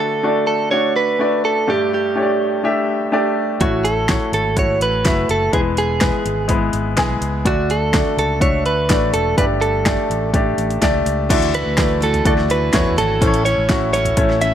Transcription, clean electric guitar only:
0, 0, Header, 1, 2, 480
1, 0, Start_track
1, 0, Tempo, 480384
1, 1684, Time_signature, 4, 2, 24, 8
1, 14528, End_track
2, 0, Start_track
2, 0, Title_t, "Clean electric guitar"
2, 0, Program_c, 0, 27
2, 0, Note_on_c, 0, 69, 80
2, 459, Note_off_c, 0, 69, 0
2, 471, Note_on_c, 0, 69, 83
2, 708, Note_off_c, 0, 69, 0
2, 712, Note_on_c, 0, 73, 81
2, 959, Note_off_c, 0, 73, 0
2, 963, Note_on_c, 0, 71, 83
2, 1444, Note_off_c, 0, 71, 0
2, 1448, Note_on_c, 0, 69, 76
2, 1693, Note_off_c, 0, 69, 0
2, 1697, Note_on_c, 0, 67, 87
2, 1928, Note_off_c, 0, 67, 0
2, 1940, Note_on_c, 0, 67, 67
2, 2613, Note_off_c, 0, 67, 0
2, 3609, Note_on_c, 0, 66, 76
2, 3842, Note_on_c, 0, 69, 75
2, 3855, Note_off_c, 0, 66, 0
2, 4325, Note_off_c, 0, 69, 0
2, 4337, Note_on_c, 0, 69, 82
2, 4579, Note_off_c, 0, 69, 0
2, 4586, Note_on_c, 0, 73, 85
2, 4816, Note_off_c, 0, 73, 0
2, 4820, Note_on_c, 0, 71, 84
2, 5299, Note_off_c, 0, 71, 0
2, 5303, Note_on_c, 0, 69, 80
2, 5519, Note_off_c, 0, 69, 0
2, 5535, Note_on_c, 0, 68, 81
2, 5599, Note_off_c, 0, 68, 0
2, 5779, Note_on_c, 0, 68, 74
2, 6454, Note_off_c, 0, 68, 0
2, 7466, Note_on_c, 0, 66, 80
2, 7702, Note_on_c, 0, 69, 73
2, 7705, Note_off_c, 0, 66, 0
2, 8171, Note_off_c, 0, 69, 0
2, 8183, Note_on_c, 0, 69, 87
2, 8407, Note_off_c, 0, 69, 0
2, 8411, Note_on_c, 0, 73, 88
2, 8649, Note_off_c, 0, 73, 0
2, 8653, Note_on_c, 0, 71, 85
2, 9126, Note_off_c, 0, 71, 0
2, 9130, Note_on_c, 0, 69, 78
2, 9367, Note_off_c, 0, 69, 0
2, 9371, Note_on_c, 0, 71, 83
2, 9436, Note_off_c, 0, 71, 0
2, 9607, Note_on_c, 0, 69, 73
2, 10289, Note_off_c, 0, 69, 0
2, 11539, Note_on_c, 0, 71, 72
2, 12021, Note_off_c, 0, 71, 0
2, 12025, Note_on_c, 0, 69, 69
2, 12247, Note_off_c, 0, 69, 0
2, 12259, Note_on_c, 0, 69, 72
2, 12322, Note_off_c, 0, 69, 0
2, 12502, Note_on_c, 0, 71, 78
2, 12967, Note_off_c, 0, 71, 0
2, 12971, Note_on_c, 0, 69, 90
2, 13438, Note_off_c, 0, 69, 0
2, 13442, Note_on_c, 0, 73, 85
2, 13910, Note_off_c, 0, 73, 0
2, 13922, Note_on_c, 0, 73, 90
2, 14399, Note_off_c, 0, 73, 0
2, 14403, Note_on_c, 0, 76, 92
2, 14528, Note_off_c, 0, 76, 0
2, 14528, End_track
0, 0, End_of_file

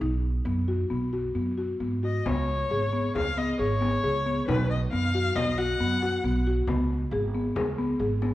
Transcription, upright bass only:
0, 0, Header, 1, 2, 480
1, 0, Start_track
1, 0, Tempo, 447427
1, 13, Time_signature, 5, 2, 24, 8
1, 4333, Tempo, 440529
1, 9019, End_track
2, 0, Start_track
2, 0, Title_t, "Upright bass"
2, 0, Program_c, 0, 32
2, 15, Note_on_c, 0, 35, 87
2, 408, Note_off_c, 0, 35, 0
2, 486, Note_on_c, 0, 42, 90
2, 885, Note_off_c, 0, 42, 0
2, 971, Note_on_c, 0, 35, 71
2, 1371, Note_off_c, 0, 35, 0
2, 1447, Note_on_c, 0, 42, 73
2, 1851, Note_off_c, 0, 42, 0
2, 1932, Note_on_c, 0, 44, 76
2, 2336, Note_off_c, 0, 44, 0
2, 2417, Note_on_c, 0, 37, 87
2, 2816, Note_off_c, 0, 37, 0
2, 2899, Note_on_c, 0, 32, 84
2, 3294, Note_off_c, 0, 32, 0
2, 3375, Note_on_c, 0, 37, 80
2, 3770, Note_off_c, 0, 37, 0
2, 3852, Note_on_c, 0, 32, 79
2, 4248, Note_off_c, 0, 32, 0
2, 4327, Note_on_c, 0, 37, 87
2, 4729, Note_off_c, 0, 37, 0
2, 4809, Note_on_c, 0, 35, 96
2, 5209, Note_off_c, 0, 35, 0
2, 5296, Note_on_c, 0, 42, 87
2, 5694, Note_off_c, 0, 42, 0
2, 5769, Note_on_c, 0, 35, 74
2, 6169, Note_off_c, 0, 35, 0
2, 6254, Note_on_c, 0, 42, 81
2, 6652, Note_off_c, 0, 42, 0
2, 6731, Note_on_c, 0, 35, 87
2, 7129, Note_off_c, 0, 35, 0
2, 7205, Note_on_c, 0, 37, 98
2, 7604, Note_off_c, 0, 37, 0
2, 7683, Note_on_c, 0, 32, 95
2, 8083, Note_off_c, 0, 32, 0
2, 8162, Note_on_c, 0, 37, 82
2, 8562, Note_off_c, 0, 37, 0
2, 8641, Note_on_c, 0, 32, 85
2, 9019, Note_off_c, 0, 32, 0
2, 9019, End_track
0, 0, End_of_file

